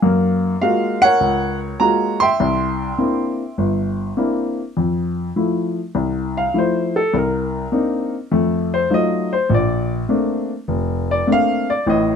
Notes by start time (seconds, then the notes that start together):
0.02 F#2 A#3
0.62 G#3 A#3 F4 F#4 F5
1.02 A#4 C#5 F#5
1.20 C#2
1.80 G#3 A#3 F4 F#4 A#5
2.20 E5 G5 C6
2.40 C2
2.98 A#3 C4 D4 E4
3.58 G1
4.17 A#3 C4 D4 E4
4.77 F2
5.36 F3 A3 E4
5.95 C2
6.37 F5
6.54 F3 A3 E4
6.58 C5
6.96 A4
7.14 C2 A#4
7.72 A#3 C4 D4 D#4
8.31 F2 A3
8.74 C5
8.90 F#3 A3 D#4 F4 D#5
9.33 C5
9.50 A#1
9.54 D5
10.09 A3 A#3 C4 D4
10.68 F1
11.11 D5
11.27 A3 A#3 C4 D4
11.32 F5
11.70 D5
11.86 A1 A2 D#5